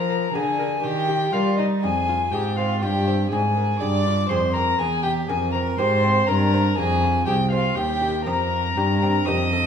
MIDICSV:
0, 0, Header, 1, 5, 480
1, 0, Start_track
1, 0, Tempo, 991736
1, 888, Time_signature, 3, 2, 24, 8
1, 4678, End_track
2, 0, Start_track
2, 0, Title_t, "Violin"
2, 0, Program_c, 0, 40
2, 0, Note_on_c, 0, 82, 76
2, 163, Note_on_c, 0, 80, 79
2, 170, Note_off_c, 0, 82, 0
2, 404, Note_on_c, 0, 79, 93
2, 411, Note_off_c, 0, 80, 0
2, 643, Note_on_c, 0, 77, 82
2, 651, Note_off_c, 0, 79, 0
2, 758, Note_off_c, 0, 77, 0
2, 761, Note_on_c, 0, 75, 76
2, 800, Note_off_c, 0, 75, 0
2, 882, Note_on_c, 0, 80, 90
2, 1121, Note_on_c, 0, 79, 81
2, 1128, Note_off_c, 0, 80, 0
2, 1241, Note_on_c, 0, 77, 80
2, 1248, Note_off_c, 0, 79, 0
2, 1356, Note_off_c, 0, 77, 0
2, 1359, Note_on_c, 0, 79, 82
2, 1597, Note_off_c, 0, 79, 0
2, 1600, Note_on_c, 0, 80, 80
2, 1833, Note_off_c, 0, 80, 0
2, 1836, Note_on_c, 0, 86, 97
2, 2077, Note_on_c, 0, 84, 81
2, 2084, Note_off_c, 0, 86, 0
2, 2195, Note_on_c, 0, 82, 93
2, 2203, Note_off_c, 0, 84, 0
2, 2317, Note_on_c, 0, 80, 93
2, 2324, Note_off_c, 0, 82, 0
2, 2430, Note_off_c, 0, 80, 0
2, 2432, Note_on_c, 0, 79, 98
2, 2471, Note_off_c, 0, 79, 0
2, 2557, Note_on_c, 0, 80, 81
2, 2669, Note_off_c, 0, 80, 0
2, 2672, Note_on_c, 0, 82, 90
2, 2711, Note_off_c, 0, 82, 0
2, 2797, Note_on_c, 0, 84, 94
2, 3033, Note_on_c, 0, 82, 92
2, 3040, Note_off_c, 0, 84, 0
2, 3272, Note_on_c, 0, 80, 102
2, 3280, Note_off_c, 0, 82, 0
2, 3512, Note_off_c, 0, 80, 0
2, 3515, Note_on_c, 0, 79, 93
2, 3631, Note_off_c, 0, 79, 0
2, 3634, Note_on_c, 0, 77, 91
2, 3753, Note_on_c, 0, 79, 94
2, 3760, Note_off_c, 0, 77, 0
2, 3988, Note_off_c, 0, 79, 0
2, 3990, Note_on_c, 0, 82, 92
2, 4482, Note_on_c, 0, 87, 101
2, 4489, Note_off_c, 0, 82, 0
2, 4678, Note_off_c, 0, 87, 0
2, 4678, End_track
3, 0, Start_track
3, 0, Title_t, "Violin"
3, 0, Program_c, 1, 40
3, 0, Note_on_c, 1, 70, 66
3, 155, Note_off_c, 1, 70, 0
3, 158, Note_on_c, 1, 68, 70
3, 397, Note_off_c, 1, 68, 0
3, 401, Note_on_c, 1, 67, 76
3, 639, Note_off_c, 1, 67, 0
3, 645, Note_on_c, 1, 65, 70
3, 769, Note_on_c, 1, 63, 64
3, 776, Note_off_c, 1, 65, 0
3, 890, Note_on_c, 1, 68, 70
3, 897, Note_off_c, 1, 63, 0
3, 1125, Note_off_c, 1, 68, 0
3, 1128, Note_on_c, 1, 67, 63
3, 1246, Note_off_c, 1, 67, 0
3, 1251, Note_on_c, 1, 65, 68
3, 1365, Note_on_c, 1, 67, 76
3, 1373, Note_off_c, 1, 65, 0
3, 1594, Note_off_c, 1, 67, 0
3, 1597, Note_on_c, 1, 68, 70
3, 1842, Note_on_c, 1, 74, 80
3, 1849, Note_off_c, 1, 68, 0
3, 2074, Note_off_c, 1, 74, 0
3, 2077, Note_on_c, 1, 72, 71
3, 2195, Note_off_c, 1, 72, 0
3, 2198, Note_on_c, 1, 70, 73
3, 2318, Note_off_c, 1, 70, 0
3, 2321, Note_on_c, 1, 68, 79
3, 2436, Note_on_c, 1, 67, 73
3, 2443, Note_off_c, 1, 68, 0
3, 2557, Note_on_c, 1, 68, 68
3, 2564, Note_off_c, 1, 67, 0
3, 2677, Note_off_c, 1, 68, 0
3, 2680, Note_on_c, 1, 70, 79
3, 2800, Note_on_c, 1, 72, 79
3, 2807, Note_off_c, 1, 70, 0
3, 3040, Note_on_c, 1, 70, 81
3, 3047, Note_off_c, 1, 72, 0
3, 3277, Note_off_c, 1, 70, 0
3, 3280, Note_on_c, 1, 68, 85
3, 3514, Note_off_c, 1, 68, 0
3, 3517, Note_on_c, 1, 67, 78
3, 3556, Note_off_c, 1, 67, 0
3, 3636, Note_on_c, 1, 65, 70
3, 3757, Note_on_c, 1, 67, 85
3, 3764, Note_off_c, 1, 65, 0
3, 3989, Note_off_c, 1, 67, 0
3, 3992, Note_on_c, 1, 70, 74
3, 4486, Note_on_c, 1, 75, 90
3, 4494, Note_off_c, 1, 70, 0
3, 4678, Note_off_c, 1, 75, 0
3, 4678, End_track
4, 0, Start_track
4, 0, Title_t, "Lute"
4, 0, Program_c, 2, 24
4, 0, Note_on_c, 2, 53, 51
4, 0, Note_on_c, 2, 65, 46
4, 49, Note_on_c, 2, 58, 46
4, 119, Note_off_c, 2, 65, 0
4, 148, Note_off_c, 2, 53, 0
4, 170, Note_on_c, 2, 50, 50
4, 171, Note_on_c, 2, 68, 47
4, 239, Note_off_c, 2, 58, 0
4, 287, Note_on_c, 2, 70, 39
4, 360, Note_off_c, 2, 68, 0
4, 389, Note_off_c, 2, 50, 0
4, 406, Note_off_c, 2, 70, 0
4, 406, Note_on_c, 2, 51, 54
4, 525, Note_on_c, 2, 67, 42
4, 628, Note_off_c, 2, 51, 0
4, 645, Note_on_c, 2, 55, 54
4, 648, Note_on_c, 2, 70, 46
4, 719, Note_off_c, 2, 67, 0
4, 770, Note_on_c, 2, 63, 42
4, 840, Note_off_c, 2, 70, 0
4, 868, Note_off_c, 2, 55, 0
4, 886, Note_on_c, 2, 41, 54
4, 889, Note_off_c, 2, 63, 0
4, 1011, Note_on_c, 2, 65, 43
4, 1109, Note_off_c, 2, 41, 0
4, 1128, Note_on_c, 2, 44, 56
4, 1130, Note_on_c, 2, 68, 49
4, 1202, Note_off_c, 2, 65, 0
4, 1250, Note_on_c, 2, 60, 44
4, 1321, Note_off_c, 2, 68, 0
4, 1349, Note_off_c, 2, 44, 0
4, 1368, Note_on_c, 2, 43, 54
4, 1369, Note_off_c, 2, 60, 0
4, 1370, Note_on_c, 2, 65, 47
4, 1488, Note_on_c, 2, 60, 48
4, 1559, Note_off_c, 2, 65, 0
4, 1587, Note_off_c, 2, 43, 0
4, 1608, Note_on_c, 2, 44, 50
4, 1608, Note_on_c, 2, 68, 49
4, 1678, Note_off_c, 2, 60, 0
4, 1726, Note_off_c, 2, 68, 0
4, 1728, Note_on_c, 2, 70, 42
4, 1826, Note_off_c, 2, 44, 0
4, 1845, Note_off_c, 2, 70, 0
4, 1847, Note_on_c, 2, 43, 58
4, 1847, Note_on_c, 2, 68, 53
4, 1970, Note_on_c, 2, 65, 46
4, 2036, Note_off_c, 2, 68, 0
4, 2065, Note_off_c, 2, 43, 0
4, 2085, Note_on_c, 2, 41, 53
4, 2085, Note_on_c, 2, 68, 45
4, 2158, Note_off_c, 2, 65, 0
4, 2205, Note_on_c, 2, 60, 41
4, 2275, Note_off_c, 2, 68, 0
4, 2304, Note_off_c, 2, 41, 0
4, 2323, Note_on_c, 2, 40, 52
4, 2324, Note_off_c, 2, 60, 0
4, 2448, Note_on_c, 2, 67, 46
4, 2543, Note_off_c, 2, 40, 0
4, 2562, Note_on_c, 2, 41, 60
4, 2562, Note_on_c, 2, 70, 53
4, 2636, Note_off_c, 2, 67, 0
4, 2684, Note_on_c, 2, 60, 50
4, 2753, Note_off_c, 2, 70, 0
4, 2782, Note_off_c, 2, 41, 0
4, 2800, Note_on_c, 2, 44, 55
4, 2802, Note_on_c, 2, 67, 50
4, 2874, Note_off_c, 2, 60, 0
4, 2921, Note_on_c, 2, 60, 47
4, 2992, Note_off_c, 2, 67, 0
4, 3020, Note_off_c, 2, 44, 0
4, 3041, Note_on_c, 2, 70, 49
4, 3042, Note_on_c, 2, 43, 57
4, 3112, Note_off_c, 2, 60, 0
4, 3161, Note_off_c, 2, 70, 0
4, 3163, Note_on_c, 2, 72, 45
4, 3261, Note_off_c, 2, 43, 0
4, 3281, Note_off_c, 2, 72, 0
4, 3282, Note_on_c, 2, 41, 57
4, 3404, Note_on_c, 2, 65, 48
4, 3501, Note_off_c, 2, 41, 0
4, 3522, Note_on_c, 2, 68, 50
4, 3593, Note_off_c, 2, 65, 0
4, 3641, Note_on_c, 2, 60, 44
4, 3711, Note_off_c, 2, 68, 0
4, 3759, Note_off_c, 2, 60, 0
4, 3761, Note_on_c, 2, 39, 64
4, 3879, Note_on_c, 2, 67, 47
4, 3980, Note_off_c, 2, 39, 0
4, 4000, Note_on_c, 2, 41, 58
4, 4001, Note_on_c, 2, 60, 47
4, 4071, Note_off_c, 2, 67, 0
4, 4193, Note_off_c, 2, 60, 0
4, 4223, Note_off_c, 2, 41, 0
4, 4245, Note_on_c, 2, 43, 59
4, 4246, Note_on_c, 2, 67, 51
4, 4367, Note_on_c, 2, 60, 51
4, 4439, Note_off_c, 2, 67, 0
4, 4469, Note_off_c, 2, 43, 0
4, 4490, Note_on_c, 2, 41, 51
4, 4490, Note_on_c, 2, 67, 52
4, 4561, Note_off_c, 2, 60, 0
4, 4609, Note_off_c, 2, 67, 0
4, 4611, Note_on_c, 2, 69, 42
4, 4678, Note_off_c, 2, 41, 0
4, 4678, Note_off_c, 2, 69, 0
4, 4678, End_track
5, 0, Start_track
5, 0, Title_t, "Cello"
5, 0, Program_c, 3, 42
5, 0, Note_on_c, 3, 53, 63
5, 161, Note_off_c, 3, 53, 0
5, 164, Note_on_c, 3, 50, 57
5, 400, Note_off_c, 3, 50, 0
5, 404, Note_on_c, 3, 51, 66
5, 641, Note_off_c, 3, 51, 0
5, 643, Note_on_c, 3, 55, 61
5, 885, Note_on_c, 3, 41, 57
5, 892, Note_off_c, 3, 55, 0
5, 1121, Note_off_c, 3, 41, 0
5, 1124, Note_on_c, 3, 44, 62
5, 1366, Note_on_c, 3, 43, 73
5, 1373, Note_off_c, 3, 44, 0
5, 1603, Note_off_c, 3, 43, 0
5, 1606, Note_on_c, 3, 44, 59
5, 1840, Note_off_c, 3, 44, 0
5, 1846, Note_on_c, 3, 43, 69
5, 2079, Note_off_c, 3, 43, 0
5, 2083, Note_on_c, 3, 41, 69
5, 2318, Note_off_c, 3, 41, 0
5, 2321, Note_on_c, 3, 40, 57
5, 2556, Note_off_c, 3, 40, 0
5, 2562, Note_on_c, 3, 41, 60
5, 2796, Note_off_c, 3, 41, 0
5, 2802, Note_on_c, 3, 44, 74
5, 3036, Note_off_c, 3, 44, 0
5, 3040, Note_on_c, 3, 43, 72
5, 3275, Note_off_c, 3, 43, 0
5, 3281, Note_on_c, 3, 41, 77
5, 3515, Note_off_c, 3, 41, 0
5, 3521, Note_on_c, 3, 36, 71
5, 3754, Note_off_c, 3, 36, 0
5, 3760, Note_on_c, 3, 39, 60
5, 3997, Note_on_c, 3, 41, 61
5, 4005, Note_off_c, 3, 39, 0
5, 4241, Note_off_c, 3, 41, 0
5, 4243, Note_on_c, 3, 43, 75
5, 4482, Note_off_c, 3, 43, 0
5, 4486, Note_on_c, 3, 41, 72
5, 4678, Note_off_c, 3, 41, 0
5, 4678, End_track
0, 0, End_of_file